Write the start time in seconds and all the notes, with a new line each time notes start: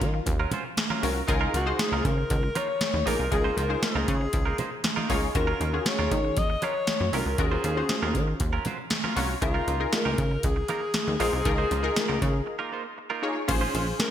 Already playing: F#3 C#4 F4 A#4
0.01 D#3, muted clean electric guitar stroke, kick, closed hi-hat
0.14 muted clean electric guitar stroke
0.26 D#2, muted clean electric guitar stroke, kick, closed hi-hat, muted conga
0.40 F#3 C#4 F4 A#4
0.51 F#3 C#4 F4 C5, closed hi-hat, muted conga, low conga
0.65 muted clean electric guitar stroke
0.77 muted clean electric guitar stroke, snare, closed hi-hat, high conga
0.90 F#3 C#4 F4 A#4, high conga
1.03 C2 F#3 C#4 F4 F#4 A#4, open hi-hat
1.16 muted clean electric guitar stroke
1.27 C#2 D#4 F4 G#4 A#4, muted clean electric guitar stroke, kick, closed hi-hat
1.41 A#3 D#4 F4 A#4
1.53 C#2 A#3 D#4 F4 F#4 A#4, closed hi-hat, muted conga
1.66 D#4 F4 G#4 C5, muted clean electric guitar stroke
1.79 G#4, muted clean electric guitar stroke, snare, closed hi-hat, high conga
1.92 C#2 A#3 D#4 F4 A#4
2.05 C#3 A#4, kick, closed hi-hat, muted conga, low conga
2.18 muted clean electric guitar stroke
2.30 C#2, muted clean electric guitar stroke, kick, closed hi-hat, muted conga
2.43 muted clean electric guitar stroke
2.55 A#3 D#4 F4 A#4 C#5, closed hi-hat, muted conga
2.68 muted clean electric guitar stroke
2.81 muted clean electric guitar stroke, snare, closed hi-hat, high conga
2.94 D#2, muted clean electric guitar stroke, high conga
3.05 A#1 A#3 D#4 F4 G#4 A#4, open hi-hat
3.19 C2 A#3 D#4 F4 A#4
3.31 C#2 D#4 F4 G#4 A#4, muted clean electric guitar stroke, kick, closed hi-hat
3.44 A#3 D#4 F4 C5
3.57 C#2 A#3 D#4 F4 A#4 C5, closed hi-hat, muted conga
3.69 D#4 F4 G#4 C5, muted clean electric guitar stroke
3.82 G#4, muted clean electric guitar stroke, snare, closed hi-hat, high conga
3.95 C#2 A#3 D#4 F4 A#4
4.08 C#3, muted clean electric guitar stroke, kick, closed hi-hat
4.21 muted clean electric guitar stroke
4.33 C#2, muted clean electric guitar stroke, kick, closed hi-hat, muted conga
4.45 A#3 D#4 F4 A#4
4.58 A#3 D#4 F4 C5, closed hi-hat, muted conga, low conga
4.71 muted clean electric guitar stroke
4.84 muted clean electric guitar stroke, snare, closed hi-hat, high conga
4.96 A#3 D#4 F4 A#4, high conga
5.09 C#2 A#3 D#4 F4 G#4 A#4 C#5, kick, open hi-hat
5.22 muted clean electric guitar stroke
5.35 D#2 C#4 F4 F#4 A#4, muted clean electric guitar stroke, kick, closed hi-hat
5.47 F#3 C#4 F4 A#4
5.60 D#2 F#3 C#4 F4 A#4, closed hi-hat, muted conga
5.73 C#4 F4 F#4 G#4, muted clean electric guitar stroke
5.86 C#5, muted clean electric guitar stroke, snare, closed hi-hat, high conga
5.99 D#2 F#3 C#4 F4 A#4
6.11 D#3, kick, closed hi-hat, muted conga, low conga
6.24 muted clean electric guitar stroke
6.37 D#2 D#5, muted clean electric guitar stroke, kick, closed hi-hat, muted conga
6.50 muted clean electric guitar stroke
6.62 F#3 C#4 F4 A#4 C#5, closed hi-hat, muted conga
6.75 muted clean electric guitar stroke
6.87 muted clean electric guitar stroke, snare, closed hi-hat, high conga
7.00 F#2, muted clean electric guitar stroke, high conga
7.13 C2 F#3 C#4 F4 F#4 A#4, open hi-hat
7.26 C#2 F#3 C#4 F4 A#4
7.38 D#2 C#4 F4 F#4 G#4 A#4, kick, closed hi-hat
7.51 F#3 C#4 F4 C5
7.64 D#2 F#3 C#4 F4 C5, closed hi-hat, muted conga
7.77 C#4 F4 F#4 C5, muted clean electric guitar stroke
7.89 muted clean electric guitar stroke, snare, closed hi-hat, high conga
8.02 D#2 F#3 C#4 F4 A#4
8.15 D#3, muted clean electric guitar stroke, kick, closed hi-hat, muted conga
8.28 muted clean electric guitar stroke
8.40 D#2, muted clean electric guitar stroke, kick, closed hi-hat, muted conga
8.53 F#3 C#4 F4 A#4
8.65 F#3 C#4 F4 C5, closed hi-hat, muted conga, low conga
8.79 muted clean electric guitar stroke
8.90 muted clean electric guitar stroke, snare, closed hi-hat, high conga
9.04 F#3 C#4 F4 A#4, high conga
9.16 C2 F#3 C#4 F4 F#4 A#4 C#5, open hi-hat
9.29 muted clean electric guitar stroke
9.41 C#2 D#4 F4 G#4 A#4, muted clean electric guitar stroke, kick, closed hi-hat
9.54 A#3 D#4 F4 A#4
9.67 C#2 A#3 D#4 F4 A#4, closed hi-hat, muted conga
9.80 D#4 F4 G#4 A#4, muted clean electric guitar stroke
9.93 A#4, muted clean electric guitar stroke, snare, closed hi-hat, high conga
10.05 C#2 A#3 D#4 F4 A#4
10.18 C#3, muted clean electric guitar stroke, kick, closed hi-hat, low conga
10.31 muted clean electric guitar stroke
10.43 C#2 G#4, muted clean electric guitar stroke, kick, closed hi-hat, muted conga
10.56 muted clean electric guitar stroke
10.68 A#3 D#4 F4 A#4, closed hi-hat, muted conga
10.82 muted clean electric guitar stroke
10.94 muted clean electric guitar stroke, snare, closed hi-hat, high conga
11.07 D#2, muted clean electric guitar stroke, high conga
11.20 A#1 A#3 D#4 F4 G#4 A#4 C5, open hi-hat
11.33 C2 A#3 D#4 F4 A#4
11.45 C#2 D#4 F4 G#4 A#4, kick, closed hi-hat
11.58 A#3 D#4 F4 C5
11.71 C#2 A#3 D#4 F4 C5, closed hi-hat, muted conga
11.83 D#4 F4 G#4 A#4, muted clean electric guitar stroke
11.96 muted clean electric guitar stroke, snare, closed hi-hat, high conga
12.08 C#2 A#3 D#4 F4 A#4
12.21 C#3, muted clean electric guitar stroke, kick, closed hi-hat, muted conga
12.33 muted clean electric guitar stroke
12.46 muted clean electric guitar stroke
12.59 A#3 D#4 F4 A#4
12.72 A#3 D#4 F4 C5
12.84 muted clean electric guitar stroke
12.98 muted clean electric guitar stroke
13.10 A#3 D#4 F4 A#4
13.22 A#3 D#4 F4 G#4 A#4 C#5
13.36 muted clean electric guitar stroke
13.48 A#1 C#4 F4 G#4 C5, muted clean electric guitar stroke, kick, closed hi-hat, crash
13.61 G#3 C#4 F4 C5
13.74 A#1 G#3 C#4 F4 C5, closed hi-hat, muted conga
13.87 muted clean electric guitar stroke
13.99 A#4, muted clean electric guitar stroke, snare, closed hi-hat, high conga